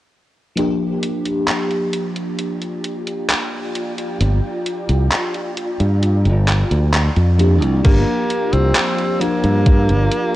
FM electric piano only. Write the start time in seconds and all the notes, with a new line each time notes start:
0.56 F3 A#3 D4 G4
7.38 F3 A#3 D4 G4
7.83 F3 A#3 D4 G4
9.20 F3 A#3 D4 G4